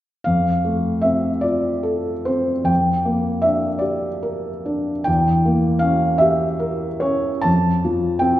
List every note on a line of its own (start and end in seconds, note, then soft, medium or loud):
0.24 2.63 F2 soft
0.24 1.04 F5 medium
0.65 1.28 A3 soft
1.02 1.68 C4 soft
1.02 1.42 E5 medium
1.41 2.10 F4 soft
1.41 2.26 D5 medium
1.83 2.52 A4 soft
2.25 2.69 C4 soft
2.25 2.68 C5 medium
2.64 5.00 F2 soft
2.64 3.44 G5 medium
3.05 3.67 A#3 soft
3.42 4.07 D4 soft
3.42 3.82 E5 medium
3.79 4.47 G4 soft
3.79 5.04 D5 medium
4.23 4.90 A#4 soft
4.66 5.07 D4 soft
5.04 7.42 E2 medium
5.04 5.82 G5 medium
5.45 6.06 A#3 soft
5.79 6.44 C#4 soft
5.79 6.19 F5 medium
6.18 6.86 G4 soft
6.18 7.02 E5 medium
6.60 7.29 A#4 soft
7.00 7.45 C#4 soft
7.00 7.44 C#5 medium
7.42 8.40 F2 medium
7.42 8.20 A5 medium
7.85 8.40 F3 soft
8.19 8.40 C4 soft
8.19 8.40 G5 medium